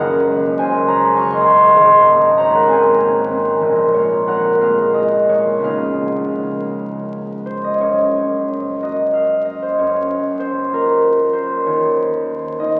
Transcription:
Already playing: F#1 F#2 F#3 A#3 F#4 G#4 A#4 F#5 A#5
0.26 G#3
0.58 F#4 C5 G#5
0.87 G#4 C#5 A#5
1.17 F#4 F5 C#6
1.32 D#5 C6
1.47 G#4 F5 C#6
1.76 G#1 G#2 D#5 C6
2.07 A#3
2.38 F#4 C#5 A#5
2.55 A#4 F#5
2.69 C4 C5 G#5
2.99 A#3
3.30 C4
3.60 A#1 A#2
3.94 G#3 F4 C#5
4.27 F4 A#4 F#5
4.61 A#3 G#4 F5
4.94 G#3 F#4 D#5
5.29 A#3 F4 C#5
5.59 C#2 A#3 B3
5.63 D#4 G#4 F5
7.46 C5
7.64 D#5
7.80 F#2 C#5
8.83 A#3 F#4 D#5
9.13 F5
9.45 D#5
9.62 C5
9.79 F#2 C#5
10.40 C5
10.71 A#3 F4 A#4
11.33 C5
11.66 D#2 C#5
12.59 A#3 D#4 D#5

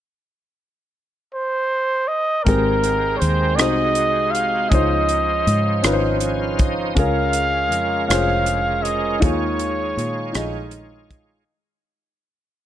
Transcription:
1.34 C5
2.08 D#5
2.44 G#1 G#2 C4 G4 G#4 A#4, kick, closed hi-hat
2.48 G#3 C4 A#4 G5
2.84 closed hi-hat
3.16 C5 C#5
3.22 D#2, closed hi-hat
3.56 C2 D#4 D#5, cross-stick, closed hi-hat
3.60 C3 G#3 D#4 F#4 G#4 A#4 C5
3.69 C5
3.95 closed hi-hat
4.31 F5, closed hi-hat
4.70 C#2 C#3 F3 C#4 D#4 F4 D#5, kick, closed hi-hat
4.74 D#4 C5
5.09 closed hi-hat
5.47 G#2, closed hi-hat
5.82 G#1 C#4 D#4 F4, cross-stick, closed hi-hat
5.86 B4
5.93 C5
6.20 G#5, closed hi-hat
6.41 F5
6.59 D#5, kick, closed hi-hat
6.95 C#2 C#3 C#4 F4 G#4 A#4 F5, kick, closed hi-hat
6.99 G#3 C#4 F4 A#4
7.33 closed hi-hat
7.72 F2, closed hi-hat
8.07 F1 C#4 F4 G#4 F5, cross-stick, closed hi-hat
8.12 C5
8.46 closed hi-hat
8.83 D#5, closed hi-hat
9.20 D#2 D#3 D#4 F4 G#4 C#5, kick, closed hi-hat
9.24 G#3 D#4 F4 C#5
9.59 closed hi-hat
9.97 A#2, closed hi-hat
10.33 A#1 D#4 F4 G#4 D#5, cross-stick, closed hi-hat
10.71 closed hi-hat
11.11 kick, closed hi-hat

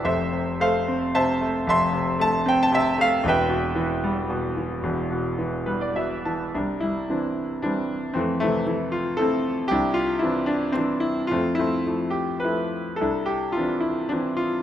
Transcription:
0.04 F1 F2 A4 C5 E5
0.32 C3
0.60 A3 A4 C5 F5
0.88 C4
1.15 C3 C5 E5 A5
1.41 A3
1.67 F1 F2 E5 A5 C6
1.93 C3
2.19 A3 A5
2.46 C4 G5
2.63 A5
2.72 C3 E5
2.98 A3 F5
3.23 E1 E2
3.28 B4 E5 G5
3.50 B2
3.76 E3
4.04 G3
4.30 B2
4.57 E3
4.83 E1 E2
5.11 B2
5.38 E3
5.66 G3 B4
5.81 D5
5.96 B2 E5
6.25 E3 A5
6.54 C2 G3 D4
6.80 G3 E4
7.10 E3 C4 D4
7.62 E3 G3 C4 D4
8.14 F2 E3 A3 C4
8.40 C3 E3 A3
8.67 E3 A3 E4
8.92 F4
9.17 F3 A3 E4 A4
9.21 C4
9.68 C2 D4 E4 G4
9.94 F4
10.19 E3 C4 E4
10.24 D4
10.46 D4
10.72 E3 C4
10.77 D4
11.00 E4
11.27 F4
11.31 F2 A3 C4
11.55 E4
11.59 A3 C4
11.87 F3 A3 E4
12.10 G4
12.40 F3 B4
12.44 A3 E4
12.96 A4
13.01 C2 D4 E4
13.26 G4
13.52 F4
13.57 E3 C4 D4
13.81 E4
14.09 E3 C4 D4
14.37 F4

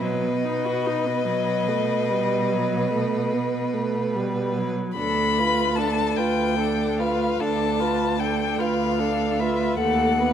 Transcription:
0.00 B2 F#3 B4 D#5
0.24 B3
0.45 D#4
0.65 F#4
0.86 D#4
1.06 B3
1.27 F#3
1.69 A3
2.10 G3
2.52 F#3
2.93 A3
3.33 B3
3.74 A3
4.16 G3
4.58 F#3
4.97 D2 D4 A4 B5
5.38 F4 B4
5.76 D4 A4 A5
6.16 D2 F4 B4 G5
6.58 D4 A4
6.99 F4 B4 F5
7.39 D2 D4 A4 A5
7.80 F4 B4
8.20 D4 A4 G5
8.58 D2 F4 B4 F5
8.99 D4 A4
9.40 F4 B4 E5
9.77 D#2 A3 A4 F#5
10.19 B3 B4

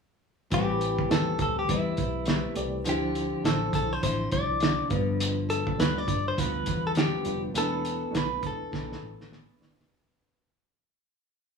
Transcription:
0.50 A1 A2 E3 G3 A3 C4 E4 G4 B4, kick, closed hi-hat
0.81 closed hi-hat
0.99 kick
1.09 E2 A3 C4 G4 A4 B4, snare, closed hi-hat
1.39 D2 A4, kick, closed hi-hat
1.59 G4
1.67 E2 G3 C4 E4 B4, kick, closed hi-hat
1.97 B1, kick, closed hi-hat
2.26 G3 C4 E4 B4, snare, closed hi-hat
2.54 C2 A3 C4 G4 D5, closed hi-hat
2.84 D2 D3 F3 C4 D4 E4 C5, closed hi-hat
2.89 G4
3.15 closed hi-hat
3.43 A1 F3 D4 E4 A4 C5, snare, closed hi-hat
3.73 B1 A4, kick, closed hi-hat
3.93 C5
4.02 A1 D3 F3 C4 E4 C5, kick, closed hi-hat
4.31 C2 D5, kick, closed hi-hat
4.60 D3 F3 C4 E4, snare, closed hi-hat
4.89 G1 G2 D3 F3 G3 B3 D4 F4 B4, kick, closed hi-hat
5.20 closed hi-hat
5.50 A4, closed hi-hat
5.67 kick
5.77 D2 G3 D4 F4 B4, snare, closed hi-hat
5.98 D5
6.08 G2, kick, closed hi-hat
6.28 C5
6.37 D2 D3 F3 B3 F4 B4, kick, closed hi-hat
6.66 E2, kick, closed hi-hat
6.87 A4
6.95 D3 F3 B3 F4 G4, snare, closed hi-hat
7.24 F1 G3 D4 F4 B4, closed hi-hat
7.53 E1 E3 A3 B3 D4 E4 B4, closed hi-hat
7.57 A4
7.85 closed hi-hat
8.11 B1 A3 D4 E4 B4, snare, closed hi-hat
8.17 B4
8.43 E1 A4, kick, closed hi-hat
8.72 B1 E3 B3 D4 A4, kick, snare
8.92 snare
9.02 A1
9.21 snare
9.31 E3 B3 D4 A4, snare
9.59 A3 D4 E4 D5, snare
9.80 snare

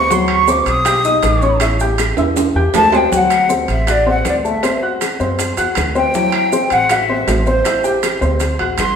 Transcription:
Already playing: D2 C#6
0.10 F#3 F#4 F#5 C6, high bongo, maracas
0.28 C#6, high timbale, claves
0.48 C4 C5 C6 D6, high bongo, maracas
0.66 B1 D#6, high bongo, high timbale, maracas
0.85 G4 G5 G6, high bongo, high timbale, claves, maracas
1.04 D#4 D#5 D#6, high bongo, maracas
1.23 A1, high bongo, low bongo, high timbale, maracas
1.42 C#4 C#5 C#6, high bongo, maracas
1.60 E4 E5 E6, high bongo, high timbale, claves, maracas
1.80 G4 G5 G6, high bongo, maracas
1.98 high bongo, high timbale, claves, maracas
2.17 E2 E4 E5 E6, high timbale, maracas
2.36 high bongo, high timbale, maracas
2.55 E2 G4 G5 G6, high bongo
2.74 D2 A5, high bongo, low bongo, low timbale, claves, maracas
2.92 C4 C5 G5 C6, high bongo, low timbale, maracas
3.12 D2 F#3 F#4 F#5, high bongo, maracas
3.30 high timbale, claves, maracas
3.49 C4 C5 C6, high bongo, maracas
3.68 A1 E5, high bongo, high timbale, maracas
3.87 F#4 D5 F#5 F#6, high bongo, high timbale, claves, maracas
4.06 C4 C5 F#5 C6, high bongo
4.25 D2 D5, high bongo, low bongo, high timbale, maracas
4.45 A3 A4 E5 A5, high bongo, maracas
4.63 C4 C5 C6, high bongo, high timbale, claves, maracas
4.82 F#4 F#5 F#6, high bongo
5.01 high bongo, high timbale, claves, maracas
5.20 F#2 C4 C5 C6, maracas
5.39 high bongo, high timbale, maracas
5.57 E2 F#4 F#5 F#6, high bongo, high timbale, maracas
5.75 D2, high bongo, low bongo, high timbale, claves, maracas
5.95 C4 C5 G5 C6, high bongo, maracas
6.14 F#3 E4 E5, high bongo, maracas
6.32 high timbale, claves
6.52 C4 C5 C6, high bongo, maracas
6.70 A1 F#5, high bongo, high timbale, maracas
6.89 F#4 E5 F#5 F#6, high bongo, high timbale, claves, maracas
7.09 C4 C5 C6, high bongo
7.27 A1, high bongo, low bongo, high timbale, low timbale, maracas
7.47 C4 C5 C6, high bongo, maracas
7.65 E4 E5 E6, high bongo, high timbale, claves, maracas
7.84 G4 G5 G6, high bongo, maracas
8.03 high bongo, high timbale, claves, maracas
8.21 D2 C4 C5 C6, maracas
8.40 high bongo, high timbale, maracas
8.59 A1 F#4 F#5 F#6, high bongo, high timbale
8.78 G1 C6, high bongo, low bongo, high timbale, claves, maracas

